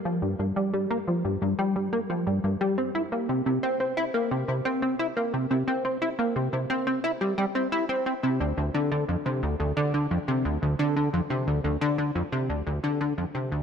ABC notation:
X:1
M:4/4
L:1/16
Q:1/4=88
K:Cmix
V:1 name="Analog synth bass" clef=bass
F, G,, G,, G, G, B, F, G,, G,, G, G, B, F, G,, G,, G, | C E B, C, C, C C E B, C, C, C C E B, C, | C, C C E B, C, C, C C E G, G, C E C C | C, D,, D,, D, D, F,, C, D,, D,, D, D, F,, C, D,, D,, D, |
D, F,, C, D,, D,, D, D, F,, C, D,, D,, D, D, F,, C, D,, |]